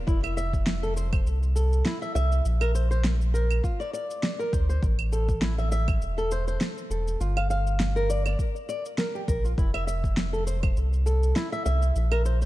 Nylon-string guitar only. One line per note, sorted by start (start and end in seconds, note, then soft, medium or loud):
0.07 0.23 E4 medium
0.23 0.36 E5 loud
0.37 0.81 E5 loud
0.83 0.96 A4 loud
0.97 1.11 C5 medium
1.13 1.26 C5 medium
1.56 1.84 A4 medium
1.86 2.01 E4 medium
2.02 2.14 E5 medium
2.15 2.45 E5 loud
2.61 2.74 A#4 loud
2.75 2.89 C5 medium
2.91 3.04 C5 medium
3.34 3.62 A#4 medium
3.63 3.79 F4 medium
3.80 3.92 D5 loud
3.93 4.38 D5 loud
4.39 4.52 A#4 loud
4.53 4.68 C5 medium
4.69 4.82 C5 medium
5.12 5.41 A4 medium
5.42 5.58 E4 medium
5.58 5.71 E5 loud
5.72 6.16 E5 loud
6.18 6.31 A4 loud
6.32 6.46 C5 medium
6.48 6.60 C5 medium
6.90 7.19 A4 medium
7.21 7.36 F4 medium
7.37 7.49 F5 loud
7.50 7.94 F5 loud
7.96 8.09 A#4 loud
8.10 8.24 D5 medium
8.26 8.39 D5 medium
8.69 8.83 D5 loud
8.98 9.14 A#4 medium
9.15 9.23 G4 medium
9.28 9.43 A#4 medium
9.44 9.52 F4 medium
9.58 9.73 E4 medium
9.74 9.86 E5 loud
9.87 10.32 E5 loud
10.33 10.46 A4 medium
10.47 10.62 C5 medium
10.63 10.76 C5 medium
11.06 11.35 A4 medium
11.36 11.52 E4 medium
11.52 11.64 E5 loud
11.66 11.95 E5 loud
12.12 12.24 A#4 loud
12.25 12.40 C5 medium
12.42 12.46 C5 medium